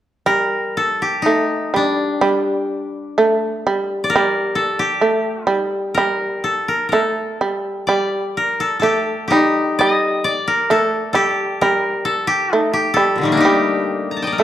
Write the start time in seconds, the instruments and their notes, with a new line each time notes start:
0.26 shamisen G3, koto A#4
0.77 koto A4
1.02 koto G4
1.22 shamisen A3, koto D#4
1.74 shamisen G3, koto D4
2.21 shamisen G3
3.18 shamisen A3
3.67 shamisen G3
4.04 koto D5
4.10 koto A#4
4.16 shamisen G3
4.55 koto A4
4.79 koto G4
5.01 shamisen A3
5.47 shamisen G3
5.55 koto D#4
5.94 shamisen G3, koto A#4
6.44 koto A4
6.68 koto A#4
6.89 koto A4 A#4
6.93 shamisen A3
7.41 shamisen G3
7.87 shamisen G3, koto D5
8.37 koto A#4
8.60 koto A4
8.80 shamisen A3, koto G4 A4
9.28 koto D#4 G4
9.32 shamisen G3
9.79 shamisen G3, koto D5
9.90 koto D#5
10.24 koto D5
10.48 koto A#4
10.70 shamisen A3, koto A4
11.13 shamisen G3, koto G4 A4
11.61 shamisen G3, koto A#4
12.05 koto A4
12.27 koto G4
12.53 shamisen A3, koto D#4
12.73 koto G4
12.94 shamisen G3, koto A4
13.16 koto A#2 D3
13.21 koto D#3 G3 A3
13.32 koto A#3 D4
13.37 koto D#4 G4
13.45 shamisen G3
14.11 koto A#5
14.17 koto A5
14.22 koto D#5 G5
14.27 koto D5
14.32 koto A#4
14.38 shamisen A3, koto A4